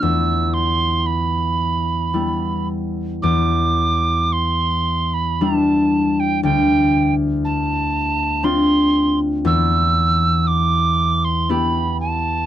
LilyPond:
<<
  \new Staff \with { instrumentName = "Tin whistle" } { \time 3/4 \key e \phrygian \tempo 4 = 59 e'''8 c'''8 b''4. r8 | d'''4 c'''8. b''16 a''8. g''16 | g''8. r16 a''4 c'''8. r16 | e'''4 d'''8. c'''16 b''8 a''8 | }
  \new Staff \with { instrumentName = "Harp" } { \time 3/4 \key e \phrygian e,2 <g b e'>4 | e,2 <g d' e'>4 | d,2 <c' d' f'>4 | e,2 <b e' g'>4 | }
>>